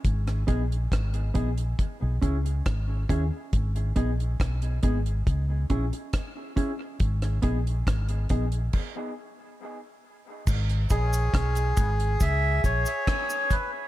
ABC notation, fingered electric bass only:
X:1
M:4/4
L:1/16
Q:1/4=69
K:G#m
V:1 name="Fingered electric bass" clef=bass
G,,,2 A,,,2 G,,,2 A,,,2 z B,,, C,,2 G,,,2 D,, z | G,,,2 A,,,2 B,,,2 G,,,2 C,,2 A,,, z4 z | G,,,2 A,,,2 G,,,2 A,,,2 z8 | G,,,2 A,,,2 B,,,2 G,,,2 C,,2 A,,, z4 z |]